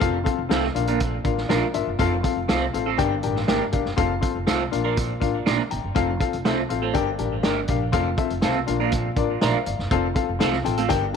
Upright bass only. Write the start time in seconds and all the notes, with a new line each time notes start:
0.02 F1
0.38 F1
0.50 C2
0.75 A#1
1.25 A1
1.50 A#1
1.75 G1
1.87 F#1
2.00 F1
2.37 F1
2.49 C2
2.74 A1
2.99 G1
3.24 A1
3.49 G1
3.74 G1
3.85 F#1
3.98 F1
4.35 F1
4.48 C2
4.73 A#1
5.22 A1
5.47 A#1
5.72 G1
5.84 F#1
5.96 F1
6.34 F1
6.45 C2
6.70 A1
6.95 G1
7.20 A1
7.44 G1
7.69 A#1
7.93 F1
8.31 F1
8.44 C2
8.69 A#1
9.17 A1
9.42 A#1
9.67 G1
9.79 F#1
9.91 F1
10.29 F1
10.41 C2
10.66 A1
10.91 G1